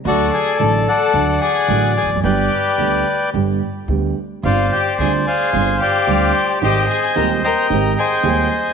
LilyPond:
<<
  \new Staff \with { instrumentName = "Bandoneon" } { \time 4/4 \key g \phrygian \tempo 4 = 110 << { fis''8 aes''8 a''8 a''4 aes''4 aes''8 | g''2 r2 | f''8 g''8 aes''8 aes''4 g''4. | g''8 aes''8 bes''8 bes''4 aes''4. | } \\ { <a' d''>4. <d'' fis''>4 d''4. | <b' d''>2 r2 | <c'' d''>4. <c'' f''>4 <c'' d''>4. | <c'' ees''>4. <ees'' g''>4 <c'' ees''>4. | } >> }
  \new Staff \with { instrumentName = "Violin" } { \time 4/4 \key g \phrygian fis'8 aes'8 a'8 a'4 aes'4 aes'8 | g'2 r2 | f'8 g'8 aes'8 aes'4 g'4. | g'8 aes'8 bes'8 bes'4 aes'4. | }
  \new Staff \with { instrumentName = "String section" } { \time 4/4 \key g \phrygian r1 | r1 | <g c' f'>8 r8 <g c' f'>8 r8 <g c' f'>8 r8 <g c' f'>8 r8 | <aes c' g'>8 r8 <aes c' g'>8 r8 <aes c' g'>8 r8 <aes c' g'>8 r8 | }
  \new Staff \with { instrumentName = "Grand piano" } { \clef bass \time 4/4 \key g \phrygian <d, d fis a fis'>8 r8 <a,, a, d fis a fis'>8 r8 <d, d fis a fis'>8 r8 <a,, a, d fis a fis'>8 r32 e,32 f,32 fis,32 | <g,, g, d g b g'>8 r8 <d, d g b g'>8 r8 <g,, g, d g b g'>8 r8 <d, d g b g'>8 r8 | <g,, g, d g c' f'>8 r8 <d, d g c' f'>8 r8 <g,, g, d g c' f'>8 r8 <d, d g c' f'>8 r8 | <aes,, aes, ees aes c' g'>8 r8 <ees,, ees, ees aes c' g'>8 r8 <aes,, aes, ees aes c' g'>8 r8 <ees,, ees, ees aes c' g'>8 r8 | }
  \new Staff \with { instrumentName = "Upright bass" } { \clef bass \time 4/4 \key g \phrygian d,16. r8 r32 a,,16. r8 r32 d,16. r8 r32 a,,16. r16 e,,32 f,,32 fis,,32 | g,,16. r8 r32 d,16. r8 r32 g,,16. r8 r32 d,16. r8 r32 | g,,16. r8 r32 d,16. r8 r32 g,,16. r8 r32 d,16. r8 r32 | aes,,16. r8 r32 ees,16. r8 r32 aes,,16. r8 r32 ees,16. r8 r32 | }
>>